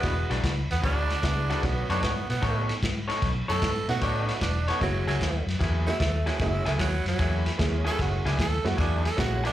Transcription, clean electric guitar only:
X:1
M:4/4
L:1/8
Q:"Swing" 1/4=151
K:Bmix
V:1 name="Clean electric guitar"
[E,G,=DF] [E,G,DF] z2 [E,G,DF] z2 [E,G,DF] | z [B,DAc] z2 [B,DAc] z2 [B,DAc] | z [B,DAc] z2 [B,DAc] z2 [B,DAc] | z [F,^A,EG] z2 [F,A,EG] z2 [F,A,EG] |
z [F,^A,EG] z2 [F,A,EG] z2 [F,A,EG] | z [F,^A,EG] z2 [F,A,EG] z2 [F,A,EG] |]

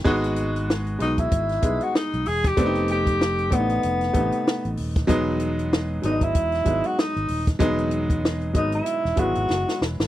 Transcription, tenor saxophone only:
X:1
M:4/4
L:1/16
Q:"Swing 16ths" 1/4=95
K:E
V:1 name="Tenor saxophone"
z6 D E4 F D2 G =G- | =G2 G4 B,8 z2 | z6 D E4 F D3 z | z6 D E3 F4 z2 |]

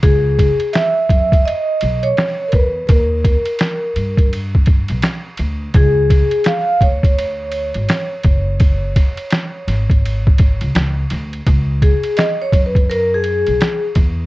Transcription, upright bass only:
X:1
M:4/4
L:1/16
Q:"Swing 16ths" 1/4=84
K:C#dor
V:1 name="Upright bass" clef=bass
C,,3 z3 F,,2 z2 B,,,2 z2 E,,2 | D,,3 z3 =G,,4- G,, B,,, z2 =D,,2 | C,,3 z3 =D,,4- D,, G,,, z2 F,,,2- | F,,,3 z3 G,,,4- G,,, C,, C,,2 =D,,2 |
C,,3 z3 F,,4- F,, B,,, z2 E,,2 |]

